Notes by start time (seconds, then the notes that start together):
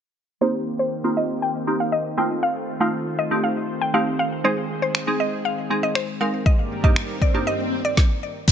0.41 D#3 A#3 C4 D#4 G4 C5
0.79 C5
1.04 A#3 C4 D#4 F4
1.17 D#5
1.42 G5
1.67 A#3 C4 D#4 G4
1.80 F5
1.92 D#5
2.17 A3 C4 D#4 F4 G5
2.43 F5
2.80 A3 C4 D#4 F4 F5
3.19 D#5
3.31 A3 C4 D#4 G4
3.44 F5
3.81 G5
3.94 A3 C4 D#4 G4 F5
4.19 F5
4.44 G#3 C4 D#4 G#4 C5, swell
4.82 C5
4.95 finger snap
5.07 G#3 C4 D#4 G#4
5.20 D#5
5.45 F5
5.70 G#3 C4 D#4 G#4
5.83 D#5
5.95 C5, finger snap
6.21 G#3 C4 D#4 A#4 F5
6.46 G2 A#3 G4 A#4 D5 D#5, kick
6.84 G2 A#3 D4 D#4 G4 D#5, kick
6.96 finger snap
7.22 D5, kick
7.34 G2 A#3 D4 D#4 G4
7.47 D#5
7.85 D5
7.97 kick, snare
8.48 kick, crash, downlifter